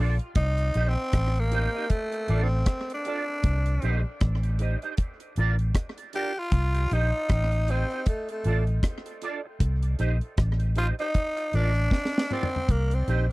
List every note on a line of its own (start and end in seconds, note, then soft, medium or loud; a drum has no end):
0.00 0.18 A#1 medium
0.00 0.15 D4 loud
0.00 0.15 F4 medium
0.00 0.15 A4 loud
0.00 0.16 D5 medium
0.19 closed hi-hat soft
0.35 0.70 C2 loud
0.35 0.90 D#4 loud
0.35 kick loud
0.35 closed hi-hat medium
0.58 closed hi-hat medium
0.74 0.95 A#1 medium
0.74 0.92 D#4 medium
0.74 0.92 G4 medium
0.74 0.92 C5 medium
0.74 0.92 D#5 medium
0.74 closed hi-hat medium
0.89 1.41 C4 medium
1.13 1.66 A1 loud
1.13 kick loud
1.13 cross-stick loud
1.13 closed hi-hat medium
1.35 closed hi-hat soft
1.40 1.91 A#3 medium
1.51 1.68 D#4 medium
1.51 1.69 G4 medium
1.51 1.69 C5 medium
1.51 1.69 D#5 medium
1.51 closed hi-hat medium
1.75 1.85 D#4 medium
1.75 1.85 G4 medium
1.75 1.84 C5 medium
1.75 1.84 D#5 medium
1.90 2.44 A3 medium
1.90 kick medium
1.90 closed hi-hat medium
2.12 closed hi-hat medium
2.28 2.62 A1 medium
2.28 2.45 D4 medium
2.28 2.46 F4 medium
2.28 2.46 A4 medium
2.28 2.46 D5 medium
2.28 closed hi-hat medium
2.43 2.94 C4 medium
2.66 kick loud
2.66 cross-stick loud
2.66 closed hi-hat medium
2.90 closed hi-hat medium
2.94 4.05 D4 medium
3.05 3.22 D4 medium
3.05 3.23 F4 medium
3.05 3.23 A4 medium
3.05 3.23 D5 medium
3.05 closed hi-hat medium
3.28 muted clean electric guitar stroke medium
3.43 3.78 C2 loud
3.43 kick loud
3.43 closed hi-hat medium
3.66 closed hi-hat medium
3.82 4.03 A#1 medium
3.82 3.99 D#4 medium
3.82 4.00 G4 medium
3.82 4.00 C5 medium
3.82 4.00 D#5 loud
3.82 closed hi-hat medium
4.20 4.74 A1 loud
4.20 kick loud
4.20 cross-stick loud
4.20 closed hi-hat medium
4.43 closed hi-hat medium
4.59 4.76 D#4 medium
4.59 4.77 G4 medium
4.59 4.77 C5 medium
4.59 4.77 D#5 medium
4.59 closed hi-hat medium
4.82 4.92 D#4 medium
4.82 4.92 G4 medium
4.82 4.92 C5 medium
4.82 4.92 D#5 medium
4.82 closed hi-hat soft
4.97 kick medium
4.97 closed hi-hat medium
5.20 closed hi-hat medium
5.36 5.71 A1 medium
5.36 5.54 D4 medium
5.36 5.54 F4 medium
5.36 5.54 A#4 medium
5.36 5.55 D5 medium
5.36 closed hi-hat medium
5.59 closed hi-hat soft
5.75 kick loud
5.75 cross-stick loud
5.75 closed hi-hat loud
5.98 closed hi-hat medium
6.13 6.30 D4 medium
6.13 6.31 F4 medium
6.13 6.40 G4 loud
6.13 6.31 A#4 medium
6.13 6.32 D5 medium
6.13 closed hi-hat medium
6.36 6.95 F4 loud
6.36 muted clean electric guitar stroke medium
6.51 6.86 C2 medium
6.51 kick loud
6.51 closed hi-hat medium
6.74 closed hi-hat medium
6.91 7.11 A#1 loud
6.91 7.08 D#4 medium
6.91 7.72 D#4 loud
6.91 7.08 G4 medium
6.91 7.09 C5 medium
6.91 7.09 D#5 medium
6.91 closed hi-hat medium
7.29 7.83 A1 loud
7.29 kick loud
7.29 cross-stick loud
7.29 closed hi-hat medium
7.52 closed hi-hat soft
7.68 8.08 C4 medium
7.68 7.85 D#4 medium
7.68 7.85 G4 medium
7.68 7.86 C5 medium
7.68 7.86 D#5 medium
7.68 closed hi-hat medium
7.91 8.01 D#4 medium
7.91 8.01 G4 medium
7.91 8.01 C5 medium
7.91 8.00 D#5 medium
7.91 closed hi-hat soft
8.06 8.29 A3 medium
8.06 kick loud
8.06 closed hi-hat medium
8.29 8.66 A3 medium
8.29 closed hi-hat medium
8.44 8.79 A1 medium
8.44 8.62 D4 medium
8.44 8.62 F4 medium
8.44 8.62 A4 loud
8.44 8.63 D5 medium
8.44 closed hi-hat medium
8.67 closed hi-hat soft
8.83 kick loud
8.83 cross-stick loud
8.83 closed hi-hat loud
9.06 closed hi-hat medium
9.22 9.39 D4 medium
9.22 9.39 F4 medium
9.22 9.39 A4 medium
9.22 9.40 D5 loud
9.22 closed hi-hat medium
9.45 muted clean electric guitar stroke soft
9.60 9.94 C2 loud
9.60 kick loud
9.60 closed hi-hat medium
9.82 closed hi-hat medium
9.99 10.19 A#1 medium
9.99 10.16 D#4 medium
9.99 10.16 G4 medium
9.99 10.16 C5 loud
9.99 10.17 D#5 medium
9.99 closed hi-hat medium
10.21 closed hi-hat soft
10.37 10.91 A1 loud
10.37 kick loud
10.37 cross-stick loud
10.37 closed hi-hat medium
10.60 closed hi-hat medium
10.75 10.93 D#4 medium
10.75 10.88 F4 loud
10.75 10.93 G4 medium
10.75 10.93 C5 medium
10.75 10.93 D#5 medium
10.75 closed hi-hat medium
10.99 11.57 D#4 loud
10.99 11.09 D#4 medium
10.99 11.09 G4 medium
10.99 11.08 C5 medium
10.99 11.08 D#5 medium
10.99 closed hi-hat soft
11.14 kick medium
11.14 closed hi-hat medium
11.37 closed hi-hat medium
11.53 11.87 A1 medium
11.53 11.70 D4 medium
11.53 12.34 D4 loud
11.53 11.70 F4 medium
11.53 11.71 A#4 medium
11.53 11.71 D5 loud
11.53 closed hi-hat medium
11.75 closed hi-hat soft
11.91 kick loud
11.91 snare medium
12.05 snare medium
12.18 snare medium
12.30 12.73 C4 loud
12.30 12.47 D4 medium
12.30 12.47 F4 medium
12.30 12.48 A#4 medium
12.30 12.48 D5 medium
12.30 mid tom medium
12.43 floor tom medium
12.53 muted clean electric guitar stroke soft
12.53 floor tom medium
12.69 13.02 C2 loud
12.69 12.95 A#3 medium
12.69 kick loud
12.69 closed hi-hat medium
12.91 13.31 C4 medium
12.91 closed hi-hat medium
13.08 13.27 A#1 medium
13.08 13.24 D#4 medium
13.08 13.25 G4 medium
13.08 13.25 C5 medium
13.08 13.25 D#5 loud
13.08 closed hi-hat medium